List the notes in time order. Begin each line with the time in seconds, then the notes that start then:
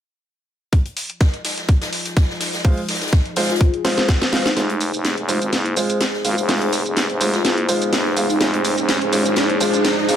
0.72 F3, kick, closed hi-hat
0.86 closed hi-hat
0.92 C5
0.96 closed hi-hat, open hi-hat
1.04 D#4
1.10 closed hi-hat
1.20 kick, snare, closed hi-hat
1.34 closed hi-hat
1.45 G#4, snare, closed hi-hat, open hi-hat
1.58 snare, closed hi-hat
1.69 kick, closed hi-hat
1.81 snare, closed hi-hat
1.93 snare, open hi-hat
2.05 snare, closed hi-hat
2.17 kick, snare, closed hi-hat
2.30 snare
2.40 snare, closed hi-hat, open hi-hat
2.53 snare, closed hi-hat
2.64 G#3 F4 C5, kick, closed hi-hat, open hi-hat
2.78 closed hi-hat
2.88 snare, closed hi-hat, open hi-hat
2.94 snare, closed hi-hat
3.02 snare, closed hi-hat
3.07 snare, closed hi-hat
3.13 kick, snare, closed hi-hat
3.26 closed hi-hat
3.36 G#3 F4 C5, snare, closed hi-hat, open hi-hat
3.43 snare, closed hi-hat
3.50 F4, snare, closed hi-hat
3.55 snare, closed hi-hat
3.61 F4, kick, closed hi-hat
3.74 closed hi-hat
3.85 G#3 F4 C5, snare, closed hi-hat, open hi-hat
3.98 snare, closed hi-hat
4.08 kick, snare, closed hi-hat
4.21 snare
4.33 G#3 F4 F5, snare, closed hi-hat, open hi-hat
4.45 D#4, snare, closed hi-hat
4.57 F1 G#3 D#4 F4 C5, snare, closed hi-hat, riser, shaker
4.70 closed hi-hat
4.81 closed hi-hat, open hi-hat, shaker
4.94 F1, closed hi-hat, shaker
5.04 snare, closed hi-hat, shaker
5.18 F1, closed hi-hat
5.28 G#3 F4 C5, closed hi-hat, open hi-hat, shaker
5.42 G#1, closed hi-hat, shaker
5.53 F#1, snare, closed hi-hat, shaker
5.66 closed hi-hat
5.77 G#3 F4 C5, closed hi-hat, open hi-hat, shaker
5.90 closed hi-hat, shaker
6.00 snare, closed hi-hat, shaker
6.13 snare
6.25 G#1 G#3 F4 F5, snare, closed hi-hat, open hi-hat, shaker
6.38 F1, closed hi-hat, shaker
6.49 G#3 F4 C5, snare, closed hi-hat, open hi-hat, shaker
6.62 closed hi-hat
6.72 snare, closed hi-hat, open hi-hat, shaker
6.86 F1, closed hi-hat, shaker
6.96 snare, closed hi-hat, shaker
7.10 F1, closed hi-hat
7.21 G#3 F4 C5, closed hi-hat, open hi-hat, shaker
7.34 F4, snare, closed hi-hat, shaker
7.45 F#1 F4, snare, closed hi-hat, shaker
7.58 closed hi-hat
7.68 G#3 F4 C5, closed hi-hat, open hi-hat, shaker
7.82 closed hi-hat, shaker
7.93 F1, snare, closed hi-hat, shaker
8.05 snare
8.16 G#3 F4 F5, closed hi-hat, open hi-hat, shaker
8.30 D#1 D#4, closed hi-hat, shaker
8.40 F1 G#3 D#4 F4 G#4 C5, snare, closed hi-hat, shaker
8.54 closed hi-hat
8.65 closed hi-hat, open hi-hat, shaker
8.78 F1, closed hi-hat, shaker
8.88 snare, closed hi-hat, shaker
9.02 F1, closed hi-hat
9.12 G#3 F4 C5, closed hi-hat, open hi-hat, shaker
9.25 G#1, closed hi-hat, shaker
9.36 F#1, snare, closed hi-hat, shaker
9.50 closed hi-hat
9.61 G#3 F4 C5, closed hi-hat, open hi-hat, shaker
9.74 closed hi-hat, shaker
9.84 snare, closed hi-hat, shaker
9.97 snare
10.08 G#1 G#3 F4 F5, snare, closed hi-hat, open hi-hat, shaker